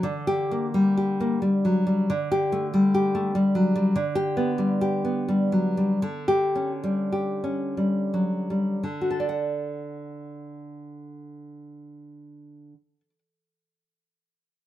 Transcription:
0.03 D3
0.27 G4
0.51 A#3
0.74 G3
0.97 G4
1.20 A#3
1.42 G3
1.65 F#3
1.87 G3
2.10 D3
2.32 G4
2.52 A3
2.74 G3
2.95 G4
3.15 A3
3.35 G3
3.55 F#3
3.76 G3
3.96 D3
4.15 G4
4.37 B3
4.58 G3
4.81 G4
5.05 B3
5.28 G3
5.52 F#3
5.77 G3
6.02 D3
6.28 G4
6.56 C#4
6.84 G3
7.12 G4
7.44 C#4
7.77 G3
8.14 F#3
8.50 G3
8.83 D3
9.01 F#4
9.11 A4
9.20 D5
9.29 F#5

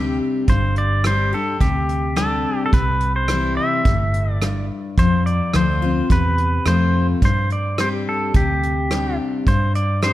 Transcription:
Already playing: D2 C3 G3 C4 D4 G4
0.47 G1 G2 C5, kick, closed hi-hat
0.76 D5, closed hi-hat
1.04 G3 C4 D4 G4 C5, cross-stick, closed hi-hat
1.33 D4 G4 A4
1.60 D2 C3 G4, kick, closed hi-hat
1.89 closed hi-hat
2.16 G3 C4 D4 G4 A4, cross-stick, closed hi-hat
2.66 A4
2.73 C2 C3 B4, kick, closed hi-hat
3.00 closed hi-hat
3.16 C5
3.28 E3 G3 C4 E4, cross-stick, closed hi-hat
3.57 E5
3.85 G1 A2, kick, closed hi-hat
4.14 closed hi-hat
4.32 D5
4.42 G2, cross-stick, closed hi-hat
4.97 F2 C5, kick, closed hi-hat
5.26 D5, closed hi-hat
5.54 D2 F3 A3 C4 F4 C5, cross-stick, closed hi-hat
5.82 C4 F4
6.10 E2 C3 B4, kick, closed hi-hat
6.38 closed hi-hat
6.66 F2 F3 A3 C4 F4 C5, cross-stick, closed hi-hat
7.22 G2 C5, kick, closed hi-hat
7.50 D5, closed hi-hat
7.78 G3 C4 D4 G4 C5, cross-stick, closed hi-hat
8.09 A4
8.34 D2 C3 G4, kick, closed hi-hat
8.63 closed hi-hat
8.91 G3 C4 D4 G4, cross-stick, closed hi-hat
9.46 G2 C5, kick, closed hi-hat
9.75 D5, closed hi-hat
10.02 G3 C4 D4 G4 C5, cross-stick, closed hi-hat

